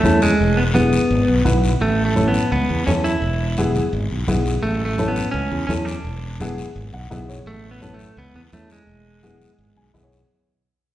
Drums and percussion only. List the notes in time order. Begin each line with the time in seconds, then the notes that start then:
0.04 high conga, short guiro
0.22 short guiro
0.39 high conga, long guiro
0.75 high conga, short guiro
0.93 short guiro
1.10 high conga, long guiro
1.45 high conga, low conga, short guiro
1.64 short guiro
1.81 high conga, long guiro
2.16 high conga, short guiro
2.34 short guiro
2.52 high conga, long guiro
2.88 high conga, short guiro
3.05 short guiro
3.22 high conga, long guiro
3.57 high conga, short guiro
3.75 low conga, short guiro
3.93 high conga, long guiro
4.28 high conga, low conga, short guiro
4.46 short guiro
4.63 high conga, long guiro
4.98 high conga, short guiro
5.16 short guiro
5.34 high conga, long guiro
5.69 high conga, short guiro
5.88 short guiro
6.05 high conga, long guiro
6.40 high conga, short guiro
6.58 short guiro
6.76 high conga, long guiro
7.11 high conga, low conga, short guiro
7.30 short guiro
7.46 high conga, long guiro
7.82 high conga, short guiro
7.99 short guiro
8.17 high conga, long guiro
8.52 high conga, short guiro
8.70 short guiro
8.87 high conga, long guiro
9.23 high conga, short guiro
9.41 short guiro
9.59 high conga, long guiro
9.95 high conga, low conga, short guiro
10.12 short guiro